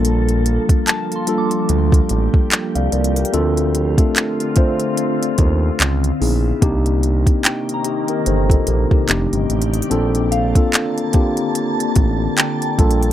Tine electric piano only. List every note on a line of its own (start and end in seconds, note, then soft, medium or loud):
0.00 0.96 G3 medium
0.00 0.96 A#3 medium
0.00 0.96 D4 medium
0.00 0.97 F4 medium
0.00 0.97 A4 loud
1.27 2.33 G3 medium
1.27 2.33 A#3 medium
1.27 2.33 D4 medium
1.27 2.34 F4 medium
1.27 2.34 A4 loud
2.75 2.91 D5 medium
2.75 2.92 F5 medium
2.93 3.15 A#4 medium
2.93 3.15 D5 medium
3.16 3.56 G4 medium
3.16 3.55 A#4 medium
3.33 3.72 A3 loud
3.33 3.72 C4 loud
3.33 3.72 D4 loud
3.33 3.72 F4 loud
3.33 3.73 A4 loud
3.98 4.36 A3 medium
3.98 4.36 C4 medium
3.98 4.36 D4 medium
3.98 4.36 F4 medium
3.98 4.37 A4 medium
4.56 5.62 A3 medium
4.56 5.62 C4 medium
4.56 5.62 D4 medium
4.56 5.62 F4 medium
4.56 5.62 C5 loud
6.20 6.49 B3 medium
6.20 6.49 C#4 medium
6.20 6.49 D#4 medium
6.20 6.49 E4 medium
6.20 6.49 G#4 medium
6.61 7.39 A#3 loud
6.61 7.39 C4 loud
6.61 7.40 D4 loud
6.61 7.40 D#4 loud
6.61 7.40 G4 loud
7.85 8.08 D#4 medium
7.85 8.08 G4 medium
8.09 8.26 G4 medium
8.09 8.26 A#4 medium
8.27 8.49 A4 medium
8.27 8.49 C5 medium
8.50 8.67 F4 medium
8.50 8.67 A4 medium
8.67 8.90 G4 medium
8.67 8.90 A#4 medium
8.91 9.08 D#4 medium
8.91 9.08 G4 medium
9.08 9.77 A3 medium
9.08 9.77 C4 medium
9.08 9.77 D4 medium
9.08 9.77 D#4 medium
9.08 9.78 G4 medium
9.90 10.29 A#3 loud
9.90 10.29 C4 loud
9.90 10.30 D4 loud
9.90 10.30 F4 loud
9.90 10.30 A4 loud
10.55 10.93 A#3 medium
10.55 10.94 C4 medium
10.55 10.94 D4 medium
10.55 10.94 F4 medium
10.55 10.94 A4 medium
11.13 12.19 A#3 medium
11.13 12.19 C4 medium
11.13 12.20 D4 medium
11.13 12.20 F4 medium
11.13 12.20 G4 loud
12.78 13.13 G3 medium
12.78 13.13 A#3 medium
12.78 13.13 D4 medium
12.78 13.13 F4 medium
12.78 13.13 A4 loud